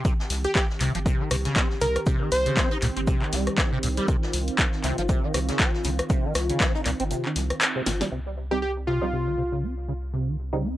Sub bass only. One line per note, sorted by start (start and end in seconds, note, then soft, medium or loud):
0.30 0.47 C2 loud
0.80 0.89 C2 loud
0.95 1.09 G1 medium
1.31 1.48 C2 medium
1.81 1.98 C2 loud
2.32 2.48 C2 medium
2.82 2.91 C2 loud
2.97 3.10 G1 medium
3.33 3.49 C2 medium
3.83 4.00 C2 loud
4.34 4.50 C2 loud
4.84 4.93 C2 loud
4.98 5.12 G1 medium
5.34 5.51 C2 medium
5.85 6.01 C2 loud
6.35 6.52 C2 loud
6.86 6.94 C2 loud
7.00 7.14 G1 medium
7.36 7.53 C2 loud
7.86 8.03 G1 medium
8.12 10.77 C2 medium